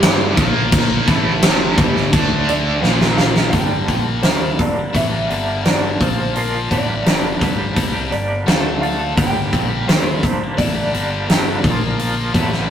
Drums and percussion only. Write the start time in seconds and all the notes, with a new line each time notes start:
0.03 snare, crash
0.37 kick, crash
0.72 kick, crash
1.08 kick, snare, crash
1.42 snare, crash
1.78 kick, crash
1.96 snare
2.13 kick, crash
2.49 crash
2.84 snare
3.01 snare
3.18 snare
3.36 snare
3.53 kick, open hi-hat
3.88 kick, open hi-hat
4.23 snare, open hi-hat
4.59 kick, open hi-hat
4.95 kick, open hi-hat
5.30 open hi-hat
5.65 snare, open hi-hat
6.01 kick, open hi-hat
6.36 open hi-hat
6.71 kick, open hi-hat
7.06 snare, open hi-hat
7.41 kick, open hi-hat
7.76 kick, open hi-hat
8.12 open hi-hat
8.48 snare, open hi-hat
8.83 open hi-hat
9.18 kick, open hi-hat
9.53 kick, open hi-hat
9.89 snare, open hi-hat
10.23 kick, open hi-hat
10.58 kick, open hi-hat
10.94 open hi-hat
11.30 snare, open hi-hat
11.64 kick, open hi-hat
11.99 open hi-hat
12.34 kick, open hi-hat
12.52 snare